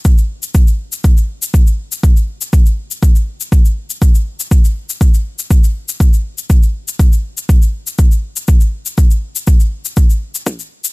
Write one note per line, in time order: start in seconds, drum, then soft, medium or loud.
0.05 kick loud
0.05 shaker medium
0.18 shaker soft
0.43 shaker medium
0.54 kick loud
0.54 shaker medium
0.67 shaker soft
0.92 shaker medium
1.04 kick loud
1.04 shaker medium
1.17 shaker soft
1.42 shaker medium
1.54 kick loud
1.54 shaker medium
1.67 shaker soft
1.92 shaker medium
2.03 kick loud
2.03 shaker medium
2.17 shaker soft
2.41 shaker medium
2.53 kick loud
2.53 shaker medium
2.66 shaker soft
2.91 shaker medium
3.03 kick loud
3.03 shaker medium
3.16 shaker soft
3.40 shaker medium
3.52 kick loud
3.52 shaker medium
3.65 shaker soft
3.90 shaker medium
4.02 kick loud
4.02 shaker medium
4.15 shaker soft
4.40 shaker medium
4.51 kick loud
4.51 shaker medium
4.65 shaker soft
4.89 shaker medium
5.01 kick loud
5.01 shaker medium
5.14 shaker soft
5.39 shaker medium
5.51 kick loud
5.51 shaker medium
5.64 shaker soft
5.88 shaker medium
6.00 kick loud
6.00 shaker medium
6.13 shaker soft
6.38 shaker medium
6.50 kick loud
6.50 shaker medium
6.63 shaker soft
6.88 shaker medium
6.99 kick loud
6.99 shaker medium
7.13 shaker soft
7.37 shaker medium
7.49 kick loud
7.49 shaker medium
7.62 shaker soft
7.87 shaker medium
7.99 kick loud
7.99 shaker medium
8.12 shaker soft
8.36 shaker medium
8.48 kick loud
8.48 shaker medium
8.61 shaker soft
8.86 shaker medium
8.98 kick loud
8.98 shaker medium
9.11 shaker soft
9.36 shaker medium
9.47 kick loud
9.47 shaker medium
9.60 shaker soft
9.85 shaker medium
9.97 kick loud
9.97 shaker medium
10.10 shaker soft
10.35 shaker medium
10.46 kick loud
10.46 shaker medium
10.59 shaker soft
10.84 shaker medium